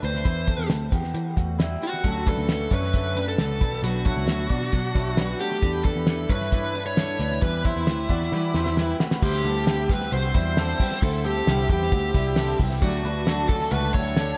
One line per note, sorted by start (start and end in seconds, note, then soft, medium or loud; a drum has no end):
0.02 0.22 D2 medium
0.02 0.26 D4 medium
0.02 0.23 B4 medium
0.02 0.67 C5 medium
0.02 closed hi-hat medium
0.24 0.54 E2 loud
0.24 0.48 E4 medium
0.24 0.47 B4 loud
0.24 kick loud
0.24 closed hi-hat loud
0.47 0.90 C4 medium
0.47 0.90 A4 medium
0.47 kick medium
0.47 closed hi-hat medium
0.58 0.68 E2 medium
0.70 0.89 D2 medium
0.70 snare loud
0.70 closed hi-hat medium
0.92 1.11 E2 medium
0.92 1.35 B3 medium
0.92 1.34 G4 medium
0.92 kick medium
0.92 closed hi-hat medium
1.14 1.33 E3 medium
1.14 closed hi-hat medium
1.36 1.75 E2 medium
1.36 1.60 A3 medium
1.36 1.59 F#4 medium
1.36 kick medium
1.36 closed hi-hat medium
1.59 1.80 G3 medium
1.59 1.81 E4 medium
1.59 snare loud
1.59 closed hi-hat medium
1.81 2.04 B3 medium
1.81 2.28 F#4 medium
1.81 2.03 G4 medium
1.81 open hi-hat medium
2.04 2.33 D2 medium
2.04 2.26 D3 medium
2.04 2.27 F#3 medium
2.04 2.26 A3 medium
2.04 2.26 C#4 medium
2.04 2.24 C#4 medium
2.04 2.26 A4 loud
2.04 kick loud
2.04 closed hi-hat medium
2.26 2.48 F#3 soft
2.26 2.49 A3 soft
2.26 2.49 C#4 medium
2.26 2.69 D4 medium
2.26 2.74 A4 medium
2.26 2.69 B4 medium
2.26 kick medium
2.26 closed hi-hat medium
2.38 2.66 D2 medium
2.48 2.71 D3 medium
2.48 2.72 F#3 medium
2.48 2.71 A3 medium
2.48 2.70 C#4 medium
2.48 snare loud
2.48 closed hi-hat medium
2.71 3.35 F#2 medium
2.71 2.93 F#3 soft
2.71 2.94 A3 medium
2.71 2.93 C#4 soft
2.71 3.14 E4 medium
2.71 3.24 B4 medium
2.71 3.13 C#5 medium
2.71 kick medium
2.71 closed hi-hat medium
2.93 3.16 D3 medium
2.93 3.16 F#3 medium
2.93 3.16 A3 medium
2.93 3.14 C#4 medium
2.93 kick medium
2.93 closed hi-hat medium
3.15 3.38 F#3 soft
3.15 3.39 A3 soft
3.15 3.38 C#4 medium
3.15 3.39 D4 medium
3.15 3.39 B4 medium
3.15 snare soft
3.15 closed hi-hat medium
3.28 3.80 A4 medium
3.38 3.61 C#2 medium
3.38 3.60 D3 medium
3.38 3.61 F#3 medium
3.38 3.62 A3 medium
3.38 3.61 C#4 medium
3.38 3.60 C#4 medium
3.38 3.61 A4 medium
3.38 snare loud
3.38 closed hi-hat medium
3.60 3.80 B1 loud
3.60 3.82 F#3 soft
3.60 3.83 B3 soft
3.60 3.83 D4 medium
3.60 3.82 B4 medium
3.60 kick loud
3.60 closed hi-hat medium
3.83 4.11 B1 loud
3.83 4.05 B2 medium
3.83 4.06 F#3 medium
3.83 4.06 B3 medium
3.83 4.06 D4 medium
3.83 4.04 D4 medium
3.83 4.04 F#4 medium
3.83 4.05 B4 medium
3.83 closed hi-hat medium
4.05 4.27 F#3 soft
4.05 4.28 B3 medium
4.05 4.28 D4 medium
4.05 4.48 E4 medium
4.05 5.40 F#4 medium
4.05 4.47 C#5 medium
4.05 kick medium
4.05 closed hi-hat medium
4.16 4.26 C#2 medium
4.27 4.46 D2 medium
4.27 4.50 B2 medium
4.27 4.51 F#3 medium
4.27 4.50 B3 medium
4.27 4.48 D4 medium
4.27 snare loud
4.27 closed hi-hat medium
4.49 4.69 B2 medium
4.49 4.72 F#3 soft
4.49 4.72 B3 soft
4.49 4.72 D4 soft
4.49 4.93 F#4 medium
4.49 4.92 D5 medium
4.49 kick medium
4.49 closed hi-hat medium
4.72 4.95 B2 medium
4.72 4.92 B2 medium
4.72 4.95 F#3 medium
4.72 4.95 B3 medium
4.72 4.93 D4 loud
4.72 kick medium
4.72 closed hi-hat medium
4.94 5.33 B1 medium
4.94 5.17 F#3 medium
4.94 5.18 B3 medium
4.94 5.17 D4 medium
4.94 5.18 E4 medium
4.94 5.17 C#5 medium
4.94 kick medium
4.94 snare soft
4.94 closed hi-hat medium
5.17 5.40 B2 medium
5.17 5.40 F#3 medium
5.17 5.40 B3 medium
5.17 5.40 D4 medium
5.17 5.38 D4 medium
5.17 5.40 B4 medium
5.17 snare loud
5.17 closed hi-hat medium
5.39 5.62 F#3 medium
5.39 5.63 A3 medium
5.39 5.62 B3 medium
5.39 5.61 D4 medium
5.39 5.62 F#4 medium
5.39 5.82 G4 medium
5.39 closed hi-hat medium
5.62 5.91 E2 medium
5.62 5.84 E3 medium
5.62 5.85 G3 medium
5.62 5.85 D4 medium
5.62 5.84 D4 medium
5.62 5.84 E4 medium
5.62 5.85 A4 medium
5.62 5.83 B4 medium
5.62 kick loud
5.62 closed hi-hat medium
5.84 6.27 D4 medium
5.84 6.06 D4 soft
5.84 6.07 E4 medium
5.84 6.31 A4 medium
5.84 6.07 B4 medium
5.84 6.27 B4 medium
5.84 kick loud
5.84 closed hi-hat medium
5.96 6.25 E2 medium
6.06 6.29 G3 medium
6.06 6.30 D4 medium
6.06 6.29 E4 medium
6.06 6.27 B4 medium
6.06 snare loud
6.06 closed hi-hat medium
6.28 7.16 G2 medium
6.28 6.51 D4 soft
6.28 6.51 E4 soft
6.28 6.72 E4 medium
6.28 6.52 B4 soft
6.28 6.82 B4 loud
6.28 6.72 C#5 medium
6.28 kick medium
6.28 closed hi-hat medium
6.51 6.74 E3 medium
6.51 6.74 G3 medium
6.51 6.75 D4 medium
6.51 6.74 E4 medium
6.51 6.72 B4 medium
6.51 kick medium
6.51 closed hi-hat medium
6.73 6.96 D4 medium
6.73 6.96 D4 soft
6.73 6.97 E4 soft
6.73 6.97 B4 medium
6.73 closed hi-hat medium
6.86 7.42 C#5 loud
6.96 7.19 G3 medium
6.96 7.20 D4 medium
6.96 7.19 D4 medium
6.96 7.19 E4 medium
6.96 7.20 A4 medium
6.96 7.18 B4 medium
6.96 snare loud
6.96 closed hi-hat medium
7.19 7.39 D2 medium
7.19 7.42 D4 medium
7.19 7.43 D4 soft
7.19 7.42 E4 medium
7.19 7.42 B4 medium
7.19 7.40 B4 medium
7.19 closed hi-hat medium
7.41 7.71 E2 loud
7.41 7.64 E3 medium
7.41 7.65 G3 medium
7.41 7.65 C4 medium
7.41 7.64 E4 medium
7.41 7.64 G4 medium
7.41 7.64 B4 medium
7.41 7.63 B4 loud
7.41 7.62 B4 loud
7.41 kick loud
7.41 closed hi-hat medium
7.64 7.86 C4 soft
7.64 8.96 E4 medium
7.64 8.07 E4 medium
7.64 7.87 G4 soft
7.64 7.87 B4 medium
7.64 8.07 C5 medium
7.64 kick medium
7.64 closed hi-hat medium
7.76 7.87 E2 medium
7.86 8.06 D2 medium
7.86 8.09 G3 medium
7.86 8.10 C4 medium
7.86 8.09 G4 medium
7.86 8.07 B4 medium
7.86 snare loud
7.86 closed hi-hat medium
8.08 8.29 E2 medium
8.08 8.32 C4 soft
8.08 8.52 F#4 medium
8.08 8.32 G4 soft
8.08 8.31 B4 medium
8.08 8.52 D5 medium
8.08 kick medium
8.08 closed hi-hat medium
8.32 8.54 E3 medium
8.32 8.51 E3 medium
8.32 8.55 G3 medium
8.32 8.55 C4 loud
8.32 8.55 G4 medium
8.32 8.53 B4 medium
8.32 snare medium
8.54 8.93 E2 medium
8.54 8.77 C4 medium
8.54 8.77 E4 soft
8.54 8.78 G4 medium
8.54 8.77 B4 medium
8.54 8.77 C5 medium
8.54 snare medium
8.66 snare medium
8.77 9.00 G3 medium
8.77 9.00 C4 medium
8.77 9.00 E4 medium
8.77 8.99 G4 medium
8.77 9.00 B4 medium
8.77 8.98 B4 medium
8.77 snare medium
8.99 9.22 A3 medium
8.99 9.22 C4 medium
8.99 9.22 F#4 medium
8.99 9.23 G4 medium
8.99 9.22 B4 medium
8.99 snare loud
9.11 snare medium
9.21 9.41 D2 loud
9.21 9.44 D3 medium
9.21 9.45 G3 medium
9.21 9.45 C4 medium
9.21 9.45 E4 medium
9.21 9.43 E4 medium
9.21 9.92 G4 loud
9.21 12.78 C5 medium
9.21 9.44 C5 loud
9.21 12.78 E5 medium
9.21 12.78 G5 medium
9.21 12.78 E6 medium
9.21 kick loud
9.21 crash loud
9.44 10.09 D2 loud
9.44 9.66 G3 soft
9.44 9.67 C4 medium
9.44 9.67 C4 soft
9.44 9.67 E4 soft
9.44 9.67 A4 medium
9.44 hi-hat pedal medium
9.44 open hi-hat medium
9.67 9.89 D3 medium
9.67 9.90 G3 medium
9.67 9.90 C4 medium
9.67 9.88 E4 medium
9.67 9.89 G4 medium
9.67 snare loud
9.67 hi-hat pedal medium
9.67 open hi-hat medium
9.89 10.12 G3 soft
9.89 10.13 B3 medium
9.89 10.13 C4 medium
9.89 10.12 E4 medium
9.89 10.12 G4 medium
9.89 10.11 B4 medium
9.89 kick loud
9.89 hi-hat pedal medium
9.89 open hi-hat medium
10.12 10.31 C2 loud
10.12 10.34 D3 medium
10.12 10.35 G3 medium
10.12 10.35 C4 medium
10.12 10.33 E4 medium
10.12 10.35 F#4 medium
10.12 10.34 C5 loud
10.12 hi-hat pedal medium
10.12 open hi-hat loud
10.34 10.73 E2 loud
10.34 10.57 G3 medium
10.34 10.57 G3 soft
10.34 10.57 C4 soft
10.34 10.57 E4 medium
10.34 10.98 C5 loud
10.34 kick loud
10.34 hi-hat pedal medium
10.34 open hi-hat medium
10.57 10.79 D3 medium
10.57 10.80 G3 medium
10.57 10.80 C4 medium
10.57 10.78 E4 medium
10.57 10.79 A4 medium
10.57 snare loud
10.57 hi-hat pedal medium
10.57 open hi-hat medium
10.79 11.01 G3 medium
10.79 11.01 B3 medium
10.79 11.02 C4 medium
10.79 11.02 E4 medium
10.79 11.02 G4 medium
10.79 kick medium
10.79 hi-hat pedal medium
10.79 open hi-hat medium
11.02 11.40 D2 loud
11.02 11.24 D3 medium
11.02 11.25 G3 medium
11.02 11.24 C4 medium
11.02 11.25 E4 medium
11.02 11.23 E4 loud
11.02 11.25 A4 loud
11.02 11.24 C5 loud
11.02 kick loud
11.02 hi-hat pedal medium
11.02 open hi-hat medium
11.24 11.47 G3 soft
11.24 11.47 C4 medium
11.24 11.47 C4 soft
11.24 11.47 E4 medium
11.24 11.67 G4 medium
11.24 11.47 A4 medium
11.24 hi-hat pedal medium
11.24 open hi-hat medium
11.47 11.66 C2 loud
11.47 11.70 D3 medium
11.47 11.70 G3 medium
11.47 11.70 C4 medium
11.47 11.69 C4 medium
11.47 11.68 E4 medium
11.47 11.68 G4 medium
11.47 snare loud
11.47 hi-hat pedal medium
11.47 open hi-hat medium
11.69 11.89 E2 medium
11.69 11.91 G3 medium
11.69 11.92 B3 medium
11.69 11.92 C4 soft
11.69 11.92 E4 medium
11.69 11.92 G4 medium
11.69 12.56 G4 medium
11.69 kick loud
11.69 hi-hat pedal medium
11.69 open hi-hat medium
11.92 12.11 D2 medium
11.92 12.14 D3 medium
11.92 12.15 G3 medium
11.92 12.15 C4 medium
11.92 12.13 E4 medium
11.92 12.15 F#4 medium
11.92 kick loud
11.92 hi-hat pedal medium
11.92 open hi-hat loud
12.14 12.53 C2 loud
12.14 12.37 G3 medium
12.14 12.37 G3 soft
12.14 12.37 C4 medium
12.14 12.37 E4 medium
12.14 kick loud
12.14 snare soft
12.14 hi-hat pedal medium
12.14 open hi-hat medium
12.36 12.59 D3 medium
12.36 12.60 G3 medium
12.36 12.60 C4 medium
12.36 12.60 C4 loud
12.36 12.58 E4 loud
12.36 12.59 A4 medium
12.36 snare loud
12.36 hi-hat pedal medium
12.36 open hi-hat medium
12.59 12.79 C2 medium
12.59 12.82 G3 medium
12.59 12.83 B3 medium
12.59 12.83 C4 medium
12.59 12.82 E4 medium
12.59 12.82 G4 medium
12.59 kick loud
12.59 hi-hat pedal medium
12.59 open hi-hat medium
12.81 13.01 D2 loud
12.81 13.04 D3 medium
12.81 13.05 F#3 medium
12.81 13.05 A3 loud
12.81 14.38 D4 medium
12.81 13.03 D4 loud
12.81 13.48 F#4 loud
12.81 13.05 F#4 medium
12.81 14.38 A4 medium
12.81 13.04 D5 loud
12.81 14.38 F#5 medium
12.81 14.38 A5 medium
12.81 kick loud
12.81 hi-hat pedal medium
12.81 open hi-hat loud
13.04 13.68 D2 medium
13.04 13.27 F#3 soft
13.04 13.27 A3 medium
13.04 13.27 D4 medium
13.04 13.27 B4 medium
13.04 hi-hat pedal medium
13.04 open hi-hat medium
13.27 13.50 D3 medium
13.27 13.50 F#3 medium
13.27 13.50 A3 medium
13.27 13.50 D4 medium
13.27 13.48 D4 medium
13.27 13.48 A4 medium
13.27 snare loud
13.27 hi-hat pedal medium
13.27 open hi-hat medium
13.49 13.72 F#3 soft
13.49 13.73 A3 medium
13.49 13.72 C#4 medium
13.49 13.72 D4 medium
13.49 13.72 A4 medium
13.49 13.71 A4 medium
13.49 kick medium
13.49 hi-hat pedal medium
13.49 open hi-hat medium
13.71 13.91 C#2 medium
13.71 13.94 D3 medium
13.71 13.95 F#3 medium
13.71 13.95 A3 medium
13.71 13.94 A3 medium
13.71 13.93 D4 medium
13.71 13.94 F#4 loud
13.71 13.94 B4 medium
13.71 hi-hat pedal medium
13.71 open hi-hat loud
13.94 14.33 D2 medium
13.94 14.16 F#3 soft
13.94 14.17 G3 medium
13.94 14.17 A3 medium
13.94 14.17 D4 medium
13.94 14.17 E4 medium
13.94 14.38 C#5 medium
13.94 kick loud
13.94 hi-hat pedal medium
13.94 open hi-hat medium
14.17 14.38 D3 medium
14.17 14.38 F#3 medium
14.17 14.38 A3 medium
14.17 14.38 D4 medium
14.17 14.38 A4 medium
14.17 snare loud
14.17 hi-hat pedal medium
14.17 open hi-hat medium